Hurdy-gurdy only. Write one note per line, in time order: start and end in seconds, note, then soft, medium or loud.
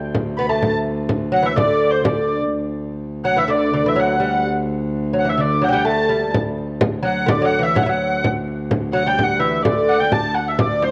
0.37 0.49 B5 loud
0.49 0.72 A5 medium
1.34 1.46 F#5 medium
1.46 1.58 E5 medium
1.56 1.91 D5 medium
1.91 2.05 C5 medium
2.05 2.39 D5 medium
3.25 3.38 F#5 loud
3.38 3.50 E5 medium
3.50 3.74 D5 medium
3.74 3.89 D5 medium
3.89 3.99 E5 medium
3.99 4.45 F#5 medium
5.19 5.29 F#5 medium
5.29 5.40 E5 medium
5.40 5.64 D5 medium
5.64 5.66 F#5 medium
5.64 5.74 F#5 medium
5.64 5.72 G5 medium
5.72 5.85 G5 medium
5.85 6.33 A5 medium
7.04 7.29 F#5 loud
7.29 7.45 D5 medium
7.45 7.63 F#5 loud
7.63 7.77 E5 medium
7.77 7.83 F#5 medium
7.83 7.89 E5 medium
7.89 8.23 F#5 medium
8.93 9.08 F#5 loud
9.07 9.24 G5 medium
9.23 9.40 F#5 medium
9.39 9.64 E5 medium
9.62 9.99 D5 medium
9.89 10.00 F#5 medium
10.00 10.13 G5 medium
10.13 10.36 A5 loud
10.34 10.48 F#5 medium
10.48 10.60 E5 medium
10.60 10.83 D5 medium
10.83 10.91 C5 medium